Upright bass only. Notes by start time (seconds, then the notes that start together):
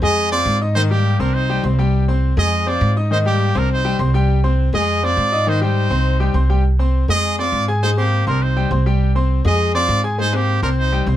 0.02 F2
0.46 G#2
1.19 C2
1.64 C2
2.37 F2
2.81 G#2
3.55 C2
3.99 C2
4.73 F2
5.17 G#2
5.90 C2
6.34 C2
7.08 F2
7.52 G#2
8.27 C2
8.71 C2
9.45 F2
9.89 G#2
10.62 C2
11.06 C2